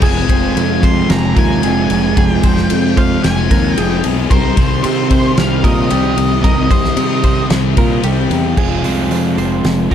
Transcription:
Already playing: distorted electric guitar C4
0.01 fingered electric bass F1, distorted electric guitar F2 C3 F3, overdriven electric guitar F3 G#3 C4, clean electric guitar G#4, lead electric guitar G#5, kick, crash
0.05 overdriven electric guitar F4
0.28 fingered electric bass F1, distorted electric guitar C3 F3, clean electric guitar C5, kick, ride
0.55 distorted electric guitar F2 C3 F3, fingered electric bass F2, ride
0.81 distorted electric guitar C3 F3, clean electric guitar C5, kick, ride
0.85 lead electric guitar C6
1.08 fingered electric bass F1, distorted electric guitar F2 C3 F3, lead electric guitar A#5, snare, ride
1.35 fingered electric bass D#2, distorted electric guitar C3 F3, clean electric guitar A#4, lead electric guitar G#5, kick, ride
1.62 fingered electric bass F1, distorted electric guitar F2 C3 F3, clean electric guitar G#4, ride
1.89 fingered electric bass F1, distorted electric guitar C3 F3, ride
2.16 fingered electric bass F1, distorted electric guitar F2 C3 F3, clean electric guitar G#4, lead electric guitar G#5, kick, ride
2.29 lead electric guitar G5
2.43 fingered electric bass F1, distorted electric guitar C3 F3, clean electric guitar C5, kick, ride
2.57 snare
2.70 distorted electric guitar F2 C3 F3, fingered electric bass F2, ride
2.97 distorted electric guitar C3 F3, clean electric guitar C5, lead electric guitar F5, kick, ride
3.23 fingered electric bass F1, distorted electric guitar F2 C3 F3, lead electric guitar G#5, snare, ride
3.50 fingered electric bass D#2, distorted electric guitar C3 F3, clean electric guitar A#4, kick, ride
3.77 fingered electric bass F1, distorted electric guitar F2 C3 F3, clean electric guitar G#4, lead electric guitar G5, ride
4.04 fingered electric bass B1, distorted electric guitar C3 F3, ride
4.30 fingered electric bass C2, distorted electric guitar C3 G3 C4, overdriven electric guitar C3 D#3 G3 C4 G4, clean electric guitar A#4, lead electric guitar C5, kick, ride
4.56 fingered electric bass C2, distorted electric guitar G3 C4, clean electric guitar C5, kick, ride
4.82 distorted electric guitar C3 G3 C4, fingered electric bass C3, lead electric guitar C5, ride
5.09 distorted electric guitar G3 C4, clean electric guitar C5, kick, ride
5.37 fingered electric bass C2, distorted electric guitar C3 G3 C4, lead electric guitar F5, snare, ride
5.63 fingered electric bass A#2, distorted electric guitar G3 C4, clean electric guitar A#4, lead electric guitar D#5, kick, ride
5.90 fingered electric bass C2, distorted electric guitar C3 G3 C4, clean electric guitar G4, ride
6.17 fingered electric bass C2, distorted electric guitar G3 C4, ride
6.43 fingered electric bass C2, distorted electric guitar C3 G3 C4, clean electric guitar A#4, lead electric guitar D#5, kick, ride
6.70 fingered electric bass C2, distorted electric guitar G3 C4, clean electric guitar C5, kick, ride
6.85 snare
6.97 fingered electric bass C3, distorted electric guitar C3 G3 C4, ride
7.23 distorted electric guitar G3 C4, clean electric guitar C5, kick, ride
7.50 fingered electric bass C2, distorted electric guitar C3 G3 C4, snare, ride
7.77 fingered electric bass A#2, distorted electric guitar G3 C4, clean electric guitar A#4, kick, ride
8.03 fingered electric bass C2, distorted electric guitar C3 G3 C4, clean electric guitar G4, ride
8.30 fingered electric bass E2, distorted electric guitar G3 C4, ride
8.56 fingered electric bass F1, distorted electric guitar F2 C3 F3, overdriven electric guitar F3 G#3 C4 F4, clean electric guitar G#4, kick, crash
8.83 fingered electric bass C2, distorted electric guitar C3 F3, clean electric guitar C5, open hi-hat
9.10 distorted electric guitar F2 C3 F3, fingered electric bass F2, open hi-hat
9.37 fingered electric bass F1, distorted electric guitar C3 F3, clean electric guitar C5, open hi-hat
9.63 fingered electric bass F1, distorted electric guitar F2 C3 F3, snare, open hi-hat
9.90 distorted electric guitar F3, overdriven electric guitar C4 F4, clean electric guitar A#4, kick, open hi-hat

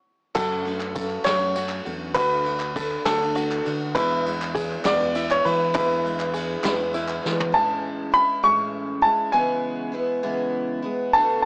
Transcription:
0.35 twelve-string acoustic guitar F#2 C#3 F#3 A3 C#4 F#4, fingered electric bass F#2, five-string banjo F#4, upright piano A4, kick, clap, crash, tambourine
0.52 clap
0.64 twelve-string acoustic guitar F#3 A3 C#4 F#4, clap, ride
0.80 clap
0.95 twelve-string acoustic guitar F#3 A3 C#4 F#4, five-string banjo A4, kick, ride, tambourine
1.10 clap
1.25 fingered electric bass F#2, twelve-string acoustic guitar F#2 C#3 F#3 A3 C#4 F#4, upright piano C#5, snare, clap, ride
1.40 clap, tambourine
1.55 twelve-string acoustic guitar F#3 A3 C#4 F#4, five-string banjo F#4, ride, tambourine
1.69 clap, tambourine
1.85 fingered electric bass E2, twelve-string acoustic guitar F#3 A3 C#4 F#4, ride
2.14 fingered electric bass D2, twelve-string acoustic guitar D3 A3 D4 F#4, five-string banjo F#4, upright piano B4, kick, clap, ride, tambourine
2.30 clap
2.45 twelve-string acoustic guitar A3 D4 F#4, clap, ride
2.60 clap
2.76 twelve-string acoustic guitar D3 A3 D4 F#4, five-string banjo A4, kick, ride, tambourine
2.91 clap
3.05 fingered electric bass D2, twelve-string acoustic guitar D3 A3 D4 F#4, upright piano A4, snare, clap, ride
3.22 clap, tambourine
3.35 twelve-string acoustic guitar D3 A3 D4 F#4, five-string banjo F#4, ride, tambourine
3.52 clap, tambourine
3.65 fingered electric bass D3, twelve-string acoustic guitar A3 D4 F#4, clap, ride
3.95 twelve-string acoustic guitar E2 B2 E3 G#3 B3 E4, upright piano E2 E3 G#3 B3 E4 B4, fingered electric bass E2, five-string banjo E4, kick, clap, ride, tambourine
4.11 clap
4.25 twelve-string acoustic guitar E3 G#3 B3 E4, clap, ride
4.42 clap
4.55 twelve-string acoustic guitar E3 G#3 B3 E4, five-string banjo G#4, kick, ride, tambourine
4.71 clap
4.85 fingered electric bass E2, twelve-string acoustic guitar E2 B2 E3 G#3 B3 E4, upright piano G#3 B3 E4 F#4 D5, snare, clap, ride
5.01 clap, tambourine
5.15 twelve-string acoustic guitar E3 G#3 B3 E4, five-string banjo E4, ride, tambourine
5.31 upright piano C#5, clap
5.45 fingered electric bass E3, twelve-string acoustic guitar E3 G#3 B3 E4, upright piano B4, clap, ride
5.74 twelve-string acoustic guitar E2 B2 E3 G#3 B3 E4, fingered electric bass E2, upright piano E2 E3 G#3 B3 E4 B4, five-string banjo E4, kick, clap, ride, tambourine
5.90 clap, tambourine
6.04 twelve-string acoustic guitar E3 G#3 B3 E4, clap, ride
6.20 clap
6.34 twelve-string acoustic guitar E3 G#3 B3 E4, five-string banjo G#4, ride, tambourine
6.63 twelve-string acoustic guitar E2 B2 E3 G#3 B3 E4, fingered electric bass E2, upright piano G#3 B3 E4 B4, snare, clap, ride
6.80 tambourine
6.93 twelve-string acoustic guitar E3 G#3 B3 E4, five-string banjo E4, ride, tambourine
7.08 clap
7.23 twelve-string acoustic guitar E3 G#3 B3 E4, fingered electric bass E3, snare
7.40 floor tom
7.52 twelve-string acoustic guitar A2 E3 G#3 C#4 E4, upright piano A5
8.12 twelve-string acoustic guitar E3 G#3 C#4 E4, upright piano B5
8.43 twelve-string acoustic guitar A2 E3 G#3 C#4 E4, upright piano C#6
9.02 twelve-string acoustic guitar G#3 C#4 E4, upright piano A5
9.32 twelve-string acoustic guitar C#3 E3 G#3 B3 E4, upright piano G#5
9.92 twelve-string acoustic guitar E3 G#3 B3 E4
10.23 twelve-string acoustic guitar C#3 E3 G#3 B3 E4
10.82 twelve-string acoustic guitar G#3 B3 E4
11.13 twelve-string acoustic guitar A2 D3 A3 B3 F#4, upright piano A5

